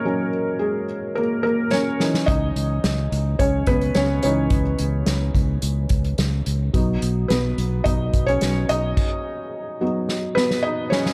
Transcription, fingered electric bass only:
X:1
M:4/4
L:1/8
Q:1/4=108
K:C#dor
V:1 name="Fingered electric bass" clef=bass
z8 | C,, C,, C,, C,, C,, C,, C,, C,, | C,, C,, C,, C,, C,, C,, C,, C,, | B,,, B,,, B,,, B,,, B,,, B,,, B,,, B,,, |
z8 |]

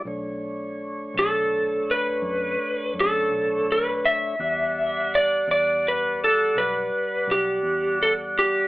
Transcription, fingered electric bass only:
X:1
M:12/8
L:1/8
Q:3/8=55
K:Bm
V:1 name="Fingered electric bass" clef=bass
B,,,3 B,,,3 F,, z F,, B,,,3 | E,,3 E,,3 B,,, z B,,, E,,3 |]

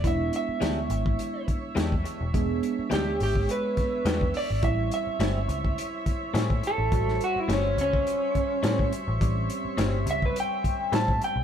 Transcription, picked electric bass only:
X:1
M:4/4
L:1/16
Q:"Swing 16ths" 1/4=105
K:A
V:1 name="Picked electric bass" clef=bass
E,,,2 z2 D,,2 G,,,2 z4 E,,2 z E,,, | E,,,2 z2 D,,2 G,,,2 z4 E,,2 z G,,, | A,,,2 z2 =G,,,2 C,,2 z4 A,,2 z A,,, | A,,,2 z2 =G,,,2 C,,2 z4 A,,2 z A,,, |
A,,,2 z2 =G,,,2 C,,2 z4 A,,2 z B,,, |]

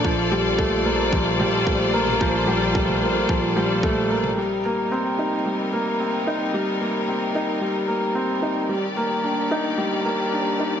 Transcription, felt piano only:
X:1
M:4/4
L:1/8
Q:1/4=111
K:Cdor
V:1 name="Felt piano"
F, G, A, B, F, G, A, B, | F, G, A, B, F, G, A, B, | G, B, C E G, B, C E | G, B, C E G, B, C E |
G, B, D E G, B, D E |]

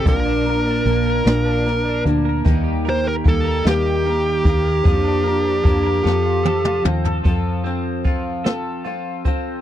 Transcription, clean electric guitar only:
X:1
M:6/8
L:1/16
Q:3/8=50
K:Bb
V:1 name="Clean electric guitar"
B,, D B D B, B B,, D B D B, B | E, G B G B, B E, G B G B, B | F, D B D B, B F, F A F C A | [F,A]2 C2 F2 A2 F2 C2 |]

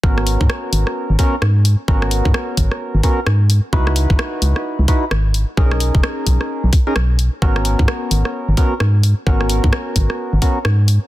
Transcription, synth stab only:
X:1
M:4/4
L:1/16
Q:"Swing 16ths" 1/4=130
K:G#m
V:1 name="Synth stab"
[B,CFA]8- [B,CFA]2 [B,CFA] z4 z | [B,CFA]8- [B,CFA]2 [B,CFA] z4 z | [DEFB]8- [DEFB]2 [DEFB] z4 z | [CDGA]8- [CDGA]2 z [CDGA] z4 |
[B,CFA]8- [B,CFA]2 [B,CFA] z4 z | [B,CFA]8- [B,CFA]2 [B,CFA] z4 z |]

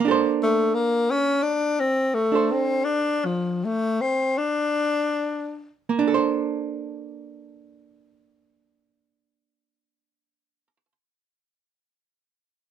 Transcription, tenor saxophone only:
X:1
M:4/4
L:1/16
Q:"Swing" 1/4=36
K:Bb
V:1 name="Tenor saxophone"
z A, B, _D =D C A, C D F, A, C D3 z | z16 |]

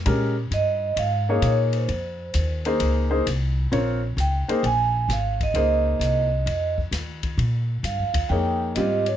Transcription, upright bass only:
X:1
M:4/4
L:1/8
Q:"Swing" 1/4=131
K:Bbdor
V:1 name="Upright bass" clef=bass
B,,2 G,,2 A,,2 B,,2 | F,,2 E,,2 D,,2 C,,2 | B,,,2 D,, z B,,,2 A,,,2 | D,,2 C,,2 F,,2 E,,2 |
B,,2 (3G,, F,, E,, F,,2 A,,2 |]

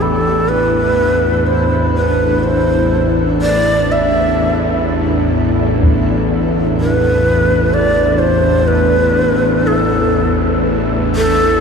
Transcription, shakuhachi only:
X:1
M:4/4
L:1/8
Q:1/4=62
K:Am
V:1 name="Shakuhachi"
A B2 c B c z d | e2 z4 B2 | d c B2 A2 z A |]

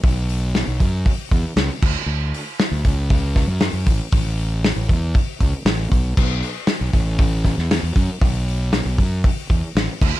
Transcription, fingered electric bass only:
X:1
M:4/4
L:1/16
Q:1/4=118
K:Bm
V:1 name="Fingered electric bass" clef=bass
B,,,4- B,,, B,,, F,,2 z2 E,, z C,, z D,, z | D,,2 z3 D,, C,,4- C,, F,,2 F,, A,,, z | A,,,4- A,,, A,,, E,,2 z2 C,, z A,,,2 B,,,2 | B,,,2 z3 B,,, A,,,4- A,,, E,,2 E,, F,, z |
B,,,4- B,,, B,,, F,,2 z2 E,, z A,,, z D,, z |]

